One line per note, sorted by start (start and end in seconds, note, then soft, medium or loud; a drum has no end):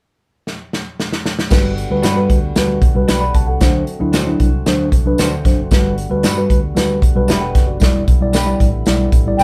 0.47 snare medium
0.73 snare medium
1.00 snare medium
1.13 snare medium
1.26 snare medium
1.39 snare medium
1.50 1.84 G1 medium
1.50 9.43 D3 medium
1.50 3.58 G3 soft
1.50 1.72 G3 medium
1.50 3.59 B3 medium
1.50 7.77 F#4 medium
1.50 1.72 F#4 medium
1.50 1.72 B4 medium
1.50 kick loud
1.50 snare loud
1.50 crash medium
1.50 tambourine medium
1.78 closed hi-hat medium
1.90 2.01 D2 medium
1.90 2.04 G3 medium
1.90 2.05 F#4 medium
1.90 2.05 B4 medium
2.02 2.26 G2 medium
2.02 2.17 D4 medium
2.02 2.17 F#4 medium
2.02 2.17 B4 medium
2.02 snare loud
2.02 closed hi-hat medium
2.02 tambourine loud
2.15 2.37 G3 medium
2.15 2.38 F#4 medium
2.15 2.38 B4 medium
2.30 2.52 D2 medium
2.30 kick medium
2.30 closed hi-hat medium
2.56 2.90 D2 medium
2.56 2.77 G3 medium
2.56 2.78 F#4 medium
2.56 2.78 B4 medium
2.56 snare loud
2.56 closed hi-hat medium
2.56 tambourine medium
2.82 kick medium
2.82 closed hi-hat medium
2.94 3.06 C2 medium
2.94 3.16 G3 medium
2.94 3.17 F#4 medium
2.94 3.07 B4 medium
3.08 3.31 B1 medium
3.08 3.22 D4 medium
3.08 3.22 F#4 medium
3.08 3.21 B4 soft
3.08 3.23 B4 medium
3.08 3.21 G5 medium
3.08 snare loud
3.08 closed hi-hat medium
3.08 tambourine medium
3.21 3.34 D5 medium
3.21 3.34 B5 medium
3.34 3.57 C2 medium
3.34 3.48 A5 medium
3.34 kick medium
3.34 closed hi-hat medium
3.47 3.73 A4 soft
3.47 3.72 F#5 medium
3.60 3.83 D2 loud
3.60 3.82 F#3 medium
3.60 5.70 A3 medium
3.60 5.70 C4 medium
3.60 3.82 D4 medium
3.60 3.83 C5 medium
3.60 kick loud
3.60 snare loud
3.60 closed hi-hat medium
3.60 tambourine medium
3.87 closed hi-hat medium
4.00 4.34 D2 medium
4.00 4.14 F#3 medium
4.00 4.15 D4 medium
4.00 4.15 E4 medium
4.13 4.27 D4 medium
4.13 4.27 F#4 medium
4.13 4.28 C5 medium
4.13 snare loud
4.13 closed hi-hat medium
4.13 tambourine medium
4.26 4.48 F#3 medium
4.26 4.48 D4 medium
4.26 4.48 E4 medium
4.39 4.62 C2 medium
4.39 kick medium
4.39 closed hi-hat medium
4.66 4.88 D2 medium
4.66 4.87 F#3 medium
4.66 4.88 D4 medium
4.66 4.88 C5 medium
4.66 snare loud
4.66 closed hi-hat medium
4.66 tambourine medium
4.92 5.14 C2 medium
4.92 kick medium
4.92 closed hi-hat medium
5.06 5.27 F#3 medium
5.06 5.27 D4 medium
5.06 5.28 B4 medium
5.18 5.41 D2 medium
5.18 5.33 D4 medium
5.18 5.33 F#4 medium
5.18 5.33 C5 medium
5.18 snare loud
5.18 closed hi-hat medium
5.18 tambourine medium
5.45 5.67 F#1 medium
5.45 5.59 F#3 medium
5.45 5.59 D4 medium
5.45 5.60 C5 medium
5.45 kick medium
5.45 snare soft
5.45 closed hi-hat medium
5.71 6.05 G1 loud
5.71 5.93 G3 medium
5.71 9.43 G3 medium
5.71 9.43 B3 medium
5.71 5.93 F#4 medium
5.71 5.94 B4 medium
5.71 kick loud
5.71 snare loud
5.71 closed hi-hat medium
5.71 tambourine medium
5.98 closed hi-hat medium
6.10 6.22 D2 medium
6.10 6.24 G3 medium
6.10 6.25 F#4 medium
6.10 6.25 B4 medium
6.23 6.46 G2 medium
6.23 6.37 D4 medium
6.23 6.38 F#4 medium
6.23 6.38 B4 medium
6.23 snare loud
6.23 closed hi-hat medium
6.23 tambourine loud
6.37 6.58 G3 medium
6.37 6.58 F#4 medium
6.37 6.59 B4 medium
6.50 6.72 D2 medium
6.50 kick medium
6.50 closed hi-hat medium
6.75 7.10 D2 medium
6.75 6.97 G3 medium
6.75 6.97 F#4 medium
6.75 6.98 B4 medium
6.75 snare loud
6.75 closed hi-hat medium
6.75 tambourine medium
7.02 kick medium
7.02 closed hi-hat medium
7.15 7.27 B1 medium
7.15 7.37 G3 medium
7.15 7.29 F#4 medium
7.15 7.29 B4 medium
7.28 7.51 E1 medium
7.28 7.42 D4 medium
7.28 7.43 F#4 medium
7.28 7.41 G4 soft
7.28 7.43 B4 medium
7.28 7.41 E5 medium
7.28 snare loud
7.28 closed hi-hat medium
7.28 tambourine medium
7.41 7.67 B4 medium
7.41 7.67 G5 medium
7.55 7.77 F#1 medium
7.55 kick medium
7.55 snare soft
7.55 closed hi-hat medium
7.67 7.93 F#4 soft
7.67 7.80 D5 medium
7.80 8.04 E1 loud
7.80 8.02 G3 medium
7.80 9.43 E4 medium
7.80 8.03 E4 medium
7.80 8.03 D5 medium
7.80 kick loud
7.80 snare loud
7.80 closed hi-hat medium
7.80 tambourine medium
8.08 8.52 B1 medium
8.08 kick medium
8.08 closed hi-hat medium
8.21 8.35 G3 medium
8.21 8.36 E4 medium
8.21 8.36 D5 medium
8.33 8.47 D4 medium
8.33 8.48 G4 medium
8.33 8.48 B4 medium
8.33 snare loud
8.33 closed hi-hat medium
8.33 tambourine loud
8.45 8.68 G3 medium
8.45 8.68 E4 medium
8.45 8.68 D5 medium
8.60 8.83 A1 medium
8.60 kick medium
8.60 closed hi-hat medium
8.86 9.09 B1 medium
8.86 9.08 G3 medium
8.86 9.08 E4 medium
8.86 9.09 D5 medium
8.86 snare loud
8.86 closed hi-hat medium
8.86 tambourine medium
9.12 9.35 A1 medium
9.12 kick medium
9.12 closed hi-hat medium
9.26 9.43 G3 medium
9.26 9.43 E4 medium
9.26 9.43 D5 medium
9.39 9.43 B1 medium
9.39 9.43 D4 medium
9.39 9.43 G4 medium
9.39 9.43 B4 medium
9.39 9.43 G5 medium
9.39 snare medium
9.39 tambourine medium